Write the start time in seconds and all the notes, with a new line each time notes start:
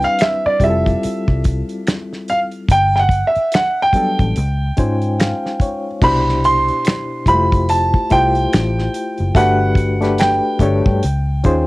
Already playing: G3 C4 D4 E4 B4
0.02 F5, closed hi-hat
0.19 E5, finger snap, snare, closed hi-hat
0.46 D5, muted fingered electric bass stroke
0.60 F1 G3 C4 E4 F4 G#4, kick, closed hi-hat
0.64 E5
0.70 A4
0.86 kick, closed hi-hat
1.03 muted fingered electric bass stroke, closed hi-hat
1.28 C2, kick
1.44 kick, closed hi-hat
1.69 closed hi-hat
1.87 finger snap, snare, closed hi-hat
2.13 snare
2.28 F5, closed hi-hat
2.52 closed hi-hat
2.69 G1 G5, kick, closed hi-hat
2.96 F#5 G5, snare
3.09 kick, closed hi-hat
3.27 E5
3.36 muted fingered electric bass stroke, closed hi-hat
3.52 F#5, finger snap, snare, closed hi-hat
3.82 G5
3.93 F#3 G3 B3 D4 A4, muted fingered electric bass stroke, kick, closed hi-hat
4.19 A1, kick, closed hi-hat
4.36 C#2, closed hi-hat
4.77 G#2 G#3 C#4 D#4 F4 C5 G#5, kick, closed hi-hat
5.02 closed hi-hat
5.20 F5, finger snap, snare, closed hi-hat
5.46 snare
5.60 C#5, kick, closed hi-hat
6.02 C2 B2 D4 E4 G4 C5 B5, kick, crash
6.29 snare
6.44 C6, closed hi-hat
6.68 closed hi-hat
6.85 finger snap, snare, closed hi-hat
7.26 F1 G3 E4 F4 G4 C5 B5, kick, closed hi-hat
7.33 A3
7.52 kick, closed hi-hat
7.69 A5, closed hi-hat
7.94 kick
8.10 C2 A3 E4 F4 G4 C5 G5, kick, closed hi-hat
8.35 closed hi-hat
8.53 A1, finger snap, snare, closed hi-hat
8.79 snare
8.94 closed hi-hat
9.18 F#1, closed hi-hat
9.35 G1 A3 D4 F#4 G4 B4 F#5, kick, closed hi-hat
9.75 kick, closed hi-hat
10.01 A3 D4 G4 A4 B4, snare, closed hi-hat
10.18 G5, finger snap, snare, closed hi-hat
10.59 G1 A3 D4 G4 A4 C#5, kick, closed hi-hat
10.86 G2, kick
11.03 C#2, closed hi-hat
11.44 D#2 C#4 D#4 F4 G#4 C5, kick, closed hi-hat